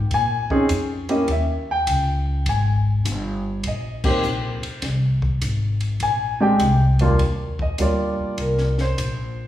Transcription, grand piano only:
0.14 0.51 G#5 medium
0.51 0.68 C4 medium
0.51 0.68 C#4 medium
0.51 0.68 D#4 medium
0.51 0.68 G#4 medium
1.09 1.27 A#3 medium
1.09 1.26 C#4 medium
1.09 1.26 E4 medium
1.09 1.27 G4 medium
1.09 1.29 D#5 medium
1.31 1.68 E5 medium
1.71 2.44 G5 medium
2.49 2.72 G#5 medium
3.67 4.05 D#5 medium
4.04 4.22 A#3 medium
4.04 4.22 C4 medium
4.04 4.22 D#4 medium
4.04 4.22 G4 medium
4.04 4.81 C5 medium
6.03 6.41 G#5 medium
6.41 6.58 G#3 medium
6.41 6.59 C4 medium
6.41 6.59 D4 medium
6.41 6.59 G4 medium
6.41 7.07 G5 medium
7.01 7.18 D#2 medium
7.01 7.18 G3 medium
7.01 7.18 A#3 medium
7.01 7.18 D4 medium
7.01 7.18 F4 medium
7.62 7.80 D#5 medium
7.79 8.71 G3 medium
7.79 8.71 A#3 soft
7.79 8.71 D4 soft
7.79 8.71 F4 medium
7.79 8.36 D5 medium
8.41 8.79 A#4 medium
8.81 9.47 C5 medium

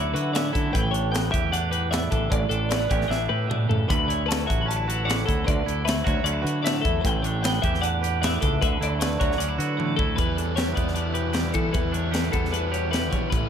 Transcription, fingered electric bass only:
0.00 0.13 D2 medium
0.14 0.52 D3 medium
0.55 0.73 D3 medium
0.75 1.30 A1 loud
1.34 2.08 E2 medium
2.12 2.31 A1 loud
2.32 2.49 A1 loud
2.50 2.88 A1 medium
2.91 3.09 A1 loud
3.10 3.28 A1 medium
3.29 3.67 A2 medium
3.70 3.88 A2 medium
3.90 4.46 D2 loud
4.49 5.24 A1 medium
5.29 5.46 D2 loud
5.48 5.65 D2 loud
5.66 6.03 D2 medium
6.07 6.23 D2 loud
6.24 6.43 D2 medium
6.44 6.82 D3 medium
6.85 7.03 E2 medium
7.05 7.60 A1 loud
7.64 8.38 E2 medium
8.43 8.61 C#2 loud
8.62 8.80 D2 loud
8.81 9.18 D2 medium
9.21 9.38 D2 medium
9.39 9.58 D2 medium
9.59 9.96 D3 medium
9.99 10.17 D2 medium
10.19 10.74 E2 medium
10.77 11.51 E2 medium
11.55 11.73 E3 medium
11.75 12.30 E2 medium
12.33 13.13 E2 medium
13.13 13.21 A#1 medium
13.32 13.49 A1 loud

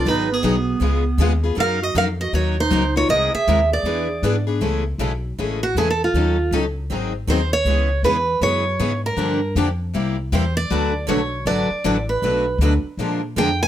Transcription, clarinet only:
0.00 0.11 F4 medium
0.09 0.33 D#4 medium
0.32 1.45 B3 medium
1.58 1.84 A#4 medium
1.82 1.96 F#4 medium
1.98 2.08 A#4 medium
2.21 2.34 F#4 medium
2.35 2.56 F#4 medium
2.60 2.94 D#4 medium
2.97 3.09 F4 medium
3.11 3.32 G#4 medium
3.33 3.69 G#4 medium
3.72 4.44 G#4 medium

